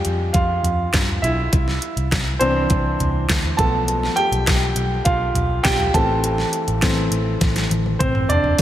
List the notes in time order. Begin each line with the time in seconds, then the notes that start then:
Already playing: G3 G#3 F4 G4 G#4 G5 G#5
0.05 F2, closed hi-hat
0.33 F2 F4 F5, kick, closed hi-hat
0.63 F2, closed hi-hat, floor tom
0.93 G2, kick, snare, clap, closed hi-hat
1.09 floor tom
1.22 B1 E4 E5, closed hi-hat
1.52 C2, kick, closed hi-hat
1.68 snare
1.82 closed hi-hat
1.96 C2, closed hi-hat
2.12 C2, kick, snare, clap, closed hi-hat
2.39 C2 E3 C4 D4 C5, closed hi-hat
2.70 C2, kick, closed hi-hat
3.00 C2, closed hi-hat, floor tom
3.29 D2, kick, snare, clap, closed hi-hat
3.44 floor tom
3.57 B1 F3 A3 B3 A4 A5, kick, closed hi-hat
3.88 closed hi-hat
4.03 snare
4.16 G4 G5, closed hi-hat
4.31 B1, closed hi-hat
4.47 B1, kick, snare, clap, closed hi-hat
4.75 B1, closed hi-hat
5.05 B1 F4 F5, kick, closed hi-hat
5.34 B1, closed hi-hat, floor tom
5.63 B1 G4 G5, kick, snare, clap, closed hi-hat
5.79 floor tom
5.94 A1 E3 A3 C4 A4 A5, kick, closed hi-hat
6.24 closed hi-hat
6.38 snare
6.53 closed hi-hat
6.68 A1, closed hi-hat
6.82 A1 E3 A3 C4, kick, snare, clap, closed hi-hat
7.11 A1, closed hi-hat
7.41 A1, kick, snare, closed hi-hat
7.56 snare, closed hi-hat
7.70 A1, closed hi-hat, high tom
7.86 high tom
7.99 A1 C4 C5, kick, closed hi-hat, mid tom
8.15 mid tom
8.29 F1 D4 D5, closed hi-hat, floor tom
8.44 floor tom
8.59 open hi-hat, crash